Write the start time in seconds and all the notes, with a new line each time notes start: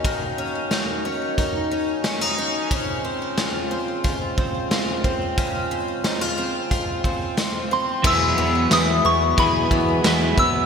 Already playing: D#3 A#3 C#4 D#4 F#4 C#5
0.04 D#3, kick, closed hi-hat
0.38 C#4
0.71 D#4, snare, closed hi-hat
1.05 C#4
1.38 D#4, kick, closed hi-hat
1.71 C#4
2.04 C#4, snare, closed hi-hat
2.21 D#4
2.38 C#4
2.71 C#3 G#3 C4 F4 C5, kick, closed hi-hat
3.05 C4
3.37 F4, snare, closed hi-hat
3.71 C4
4.04 F4, kick, closed hi-hat
4.38 C4, kick
4.71 F4, snare, closed hi-hat
5.04 C4, kick
5.38 C#3, kick, closed hi-hat
5.71 C4
6.04 D#4, snare, closed hi-hat
6.21 F4
6.38 C4
6.71 F4, kick, closed hi-hat
7.04 C4, kick
7.37 F4, snare, closed hi-hat
7.71 C4 C6
8.02 E2 E3 F#3 G#3 B3 F#4 B4, kick, crash
8.07 E4 G#4 E6
8.38 E2 B3
8.71 E2 E4 D#6, snare, ride, tambourine
9.05 E2 B3 C#6
9.37 E2 F#3 B3 E4 G#4 B5, kick, ride
9.41 G#4
9.71 E3 B3, kick
10.03 E2 F#3 B3 E4, snare, ride, tambourine
10.08 G#4
10.38 E2 B3 E6, kick